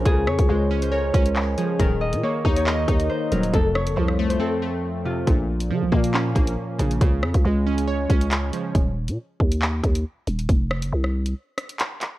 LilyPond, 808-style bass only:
\new Staff \with { instrumentName = "808-style bass" } { \clef bass \time 4/4 \key ees \dorian \tempo 4 = 138 des,8 f,16 des,16 des,4. des,4 r8 | ees,,8. bes,16 r8 ees,4 ees,8 r8 ees,,8 | f,,8. ges,,16 c,4 r2 | bes,,4 des16 bes,,16 bes,4 bes,,8 r8 bes,,8 |
des,8 f,16 des,16 des,4. des,4 r8 | ees,,8. bes,16 r8 ees,4 ees,8 r8 ees,,8 | f,,8. ges,,16 c,4 r2 | }